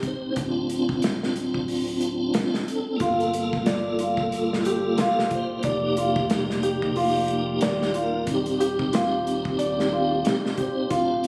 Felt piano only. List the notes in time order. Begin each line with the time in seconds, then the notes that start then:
3.01 F4
3.67 D5
4.00 F4
4.66 G4
4.99 F4
5.65 D5
5.98 F4
6.63 G4
6.96 F4
7.62 D5
7.94 F4
8.60 G4
8.93 F4
9.59 D5
9.92 F4
10.58 G4
10.90 F4